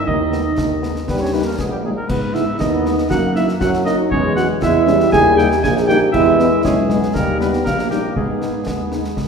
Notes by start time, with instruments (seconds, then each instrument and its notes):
0.07 tuba D#2, trombone section D#3, euphonium D#4, cornet D#5, concert bass drum
0.32 french horn section G#3 B3 D#4, snare
0.58 tuba D#2, trombone section D#3, concert bass drum, snare
0.83 french horn section G#3 B3 D#4, trombone section G#3, snare
0.96 snare
1.07 tuba D#2, trombone section G3, euphonium B3, cornet B4, concert bass drum, snare
1.21 euphonium C#4, cornet C#5
1.33 french horn section G3 A#3 D#4, euphonium B3, cornet B4
1.45 euphonium A#3, cornet A#4
1.59 tuba A#1, euphonium G#3, trombone section B3, cornet G#4, concert bass drum, snare
1.70 euphonium G3, cornet G4
1.84 french horn section G3 A#3 D#4, euphonium G#3, trombone section A#3, cornet G#4
1.96 euphonium A#3, cornet A#4
2.08 tuba G#2, euphonium B3, cornet B4, concert bass drum, crash
2.34 french horn section G#3 B3 D#4, euphonium E4, cornet E5, snare
2.59 tuba D#2, trombone section B3, euphonium D#4, cornet D#5, concert bass drum, snare
2.85 french horn section G#3 B3 D#4, snare
2.98 snare
3.10 tuba F#2, trombone section A#3, euphonium F#4, cornet F#5, concert bass drum, snare
3.35 french horn section A#3 D#4, euphonium E4, cornet E5, snare
3.48 snare
3.60 tuba F#2, trombone section F#3, euphonium F#4, cornet F#5, concert bass drum, snare
3.74 snare
3.85 french horn section A#3 D#4, euphonium D#4, cornet D#5, snare
4.10 tuba E2, trombone section G#3, euphonium C#4, cornet C#5, concert bass drum
4.36 french horn section G#3 C#4, euphonium F#4, cornet F#5, snare
4.62 tuba E2, trombone section G#3, euphonium E4, cornet E5, concert bass drum, snare
4.86 trombone section G3, french horn section G#3 C#4, snare
5.00 snare
5.12 tuba D#2, euphonium G#4, cornet G#5, concert bass drum, snare
5.37 french horn section G3 A#3 D#4, euphonium G4, cornet G5, snare
5.52 snare
5.63 tuba A#1, trombone section A#3, euphonium G#4, cornet G#5, concert bass drum, snare
5.77 snare
5.87 french horn section G3 A#3 D#4, euphonium G4, cornet G5, snare
6.12 tuba E2, trombone section G#3, euphonium E4, cornet E5, concert bass drum, crash
6.39 french horn section G#3 B3, snare
6.64 tuba B1, euphonium G#3, trombone section C#4, cornet G#4, concert bass drum, snare
6.89 french horn section G#3 B3, trombone section B3, snare
7.03 snare
7.14 tuba D#2, trombone section G3, euphonium A#3, cornet A#4, concert bass drum, snare
7.40 french horn section G3 A#3 D#4, euphonium B3, cornet B4, snare
7.53 snare
7.64 tuba A#1, trombone section A#3, euphonium A#3, cornet A#4, concert bass drum, snare
7.79 snare
7.90 french horn section G3 A#3 D#4, euphonium G3, cornet G4, snare
8.15 tuba G#2, euphonium G#3, trombone section B3, cornet G#4, concert bass drum
8.41 french horn section G#3 B3 D#4, snare
8.66 tuba D#2, concert bass drum, snare
8.91 french horn section G#3 B3 D#4, snare
9.04 snare
9.17 tuba G#2, concert bass drum, snare